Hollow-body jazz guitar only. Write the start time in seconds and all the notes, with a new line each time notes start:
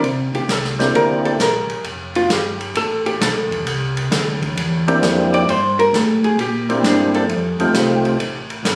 0.35 G4
0.51 A4
0.96 A#4
1.25 A4
1.41 A#4
2.16 F4
2.32 G4
2.77 A4
3.06 G4
3.22 A4
5.34 D5
5.50 C5
5.79 A#4
5.95 A4
6.25 G#4
6.41 G4
6.70 A#3
6.86 D4
7.15 A4